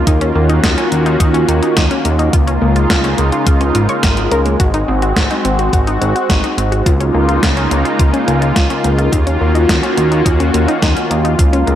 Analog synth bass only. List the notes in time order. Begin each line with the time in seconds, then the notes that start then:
0.07 D#2
0.35 D#2
0.64 D#2
0.92 D#2
1.20 D#2
1.48 D#2
1.77 D#2
2.05 D#2
2.33 C#2
2.62 C#2
2.90 C#2
3.19 C#2
3.47 C#2
3.75 G#1
4.03 G#1
4.32 C#2
4.60 G#1
4.88 G#1
5.16 G#1
5.45 G#1
5.73 G#1
6.01 G#1
6.30 G#1
6.58 G#1
6.86 C#2
7.14 C#2
7.43 C#2
7.71 C#2
8.00 C#2
8.28 C#2
8.56 C#2
8.85 C#2
9.13 D#2
9.41 D#2
9.69 D#2
9.98 D#2
10.26 D#2
10.54 D#2
10.82 D#2
11.11 D#2
11.39 C#2
11.67 C#2